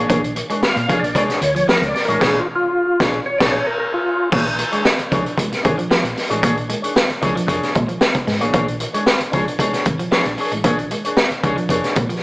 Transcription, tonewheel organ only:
0.65 1.00 F5 loud
0.99 1.17 D5 loud
1.18 1.29 D5 loud
1.43 1.67 C#5 medium
1.70 1.87 A#4 loud
1.88 2.05 D5 loud
2.05 2.21 A#4 medium
2.21 2.39 G#4 medium
2.39 2.47 F4 medium
2.55 3.05 F4 loud
3.26 3.39 C#5 loud
3.38 3.52 D5 medium
3.51 3.66 C#5 medium
3.67 3.78 A#4 medium
3.79 3.92 A#4 medium
3.94 4.30 F4 medium

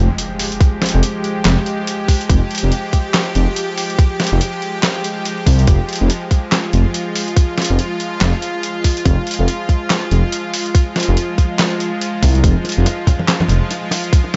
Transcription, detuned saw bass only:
0.94 1.02 F1 medium
1.45 1.57 F1 medium
2.30 2.41 F1 loud
2.63 2.71 F1 loud
3.35 3.47 F1 medium
4.32 4.40 F1 medium
5.46 5.66 C2 medium
5.68 5.79 F1 loud
6.01 6.09 F1 loud
6.73 6.85 F1 medium
7.70 7.78 F1 medium
8.21 8.33 F1 medium
9.06 9.17 F1 loud
9.39 9.47 F1 medium
10.11 10.23 F1 medium
11.08 11.16 F1 medium
12.23 12.42 C2 loud
12.44 12.55 F1 loud
12.77 12.85 F1 medium
13.50 13.61 F1 medium

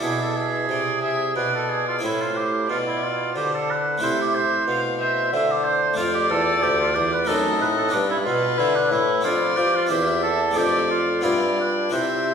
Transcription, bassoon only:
0.03 0.68 B2 soft
0.69 1.34 C3 soft
1.36 2.01 B2 soft
2.03 2.68 A2 medium
2.70 3.35 B2 medium
3.35 4.00 D3 medium
4.02 4.44 C3 soft
4.67 5.29 B2 medium
5.33 5.97 D3 medium
5.97 6.28 F2 medium
6.31 6.63 E2 medium
6.63 6.95 D2 medium
6.95 7.27 E2 medium
7.28 7.63 F#2 medium
7.61 7.93 A2 medium
7.94 8.28 G2 medium
8.26 8.58 B2 medium
8.59 8.93 D3 medium
8.91 9.24 A2 medium
9.25 9.57 F2 medium
9.58 9.90 F3 medium
9.91 10.59 E2 medium
10.57 11.25 F2 medium
11.24 11.92 G2 medium
11.93 12.34 C3 medium

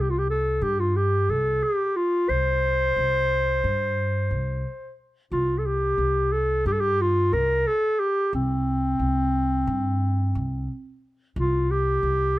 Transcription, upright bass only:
0.00 0.58 C2 medium
0.62 1.25 G2 medium
1.29 1.60 C2 medium
2.29 2.92 C2 medium
2.96 3.60 C2 medium
3.64 4.27 G2 medium
4.31 4.62 C2 medium
5.32 5.94 C2 medium
5.98 6.61 C2 medium
6.66 7.28 G2 medium
7.33 7.64 C2 medium
8.33 8.96 C2 medium
8.99 9.63 C2 medium
9.67 10.30 G2 medium
10.35 10.66 C2 medium
11.36 11.99 C2 medium
12.03 12.39 C2 medium

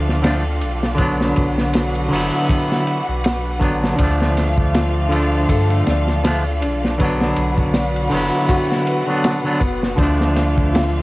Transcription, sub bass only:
0.00 0.64 D2 medium
0.62 1.34 B1 medium
1.38 2.09 B1 medium
2.12 2.30 F#1 medium
3.08 3.63 B1 medium
3.62 3.95 A1 medium
4.00 5.46 D2 loud
5.49 5.83 G2 loud
5.87 6.64 D2 medium
6.62 7.34 B1 medium
7.37 8.08 B1 medium
8.11 8.30 F#1 medium
9.62 9.95 F#1 medium
9.98 11.02 D2 loud

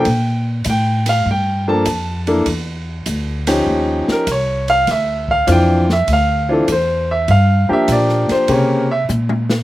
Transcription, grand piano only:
0.00 0.44 G5 loud
0.70 1.08 G5 medium
1.09 1.27 F5 medium
1.31 1.69 G5 medium
1.68 1.85 F3 medium
1.68 1.85 A#3 medium
1.68 1.85 D4 medium
1.68 1.85 A4 medium
1.68 2.24 A5 medium
2.27 2.45 E3 medium
2.27 2.45 A#3 medium
2.27 2.45 D4 medium
2.27 2.45 A4 medium
3.47 4.23 F3 medium
3.47 4.23 C#4 medium
3.47 4.23 D#4 medium
3.47 4.23 G4 medium
4.12 4.29 A#4 medium
4.32 4.70 C#5 medium
4.70 4.88 F5 loud
4.91 5.29 E5 medium
5.31 5.48 F5 loud
5.47 5.85 E3 medium
5.47 5.85 C4 medium
5.47 5.84 D4 medium
5.47 5.85 F4 medium
5.52 5.90 G5 medium
5.93 6.09 E5 loud
6.13 6.51 F5 loud
6.49 6.66 E3 medium
6.49 6.67 C4 medium
6.49 6.66 D4 medium
6.49 6.66 F4 medium
6.49 6.70 A4 medium
6.72 7.10 C5 medium
7.11 7.29 E5 medium
7.31 7.70 F5 loud
7.69 8.45 F3 medium
7.69 8.45 A#3 medium
7.69 8.45 D4 medium
7.69 8.45 G4 medium
7.73 7.90 E5 loud
7.92 8.30 D5 medium
8.32 8.49 C5 medium
8.48 8.86 C#3 medium
8.48 8.86 A#3 medium
8.48 8.86 C4 medium
8.48 8.86 G4 medium
8.48 8.90 C#5 medium
8.91 9.02 E5 medium

